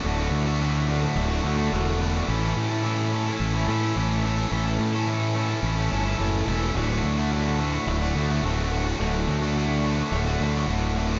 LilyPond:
<<
  \new Staff \with { instrumentName = "Distorted electric guitar" } { \time 4/4 \key d \major \tempo 4 = 107 <d, a, d a fis'>16 <d a fis'>8 <d a fis'>16 <d, a, d a fis'>8 <a, d a fis'>16 <d a fis'>8 <d a fis'>16 <a, d a fis'>16 <d a fis'>16 <d, a, d a fis'>8 <a, d a fis'>16 <d a fis'>16 | <a, e a cis' e' a'>16 <a cis' e' a'>8 <a cis' e' a'>16 <a, e a cis' e' a'>8 <a cis' e' a'>16 <a cis' e' a'>8 <a cis' e' a'>16 <a cis' e' a'>16 <a cis' e' a'>16 <a, e a cis' e' a'>8 <a cis' e' a'>16 <a cis' e' a'>16 | <a, e a cis' e' a'>16 <a cis' e' a'>8 <a cis' e' a'>16 <a, e a cis' e' a'>8 <a cis' e' a'>16 <a cis' e' a'>8 <a cis' e' a'>16 <a cis' e' a'>16 <a cis' e' a'>16 <a, e a cis' e' a'>8 <a cis' e' a'>16 <a cis' e' a'>16 | <d, a, d a fis'>16 <d a fis'>8 <d a fis'>16 <d, a, d a fis'>8 <a, d a fis'>16 <d a fis'>8 <d a fis'>16 <a, d a fis'>16 <d a fis'>16 <d, a, d a fis'>8 <a, d a fis'>16 <d a fis'>16 |
<d, a, d a fis'>16 <d a fis'>8 <d a fis'>16 <d, a, d a fis'>8 <a, d a fis'>16 <d a fis'>8 <d a fis'>16 <a, d a fis'>16 <d a fis'>16 <d, a, d a fis'>8 <a, d a fis'>16 <d a fis'>16 | }
  \new Staff \with { instrumentName = "Fingered electric bass" } { \clef bass \time 4/4 \key d \major d,,8 d,4. d,,8 d,8 e,,4 | a,,8 a,4. a,,8 a,8 a,,4 | a,,8 a,4. a,,8 g,,8 fis,,8 e,,8 | d,,8 d,4. d,,8 d,8 d,,4 |
d,,8 d,4. d,,8 d,8 d,,4 | }
>>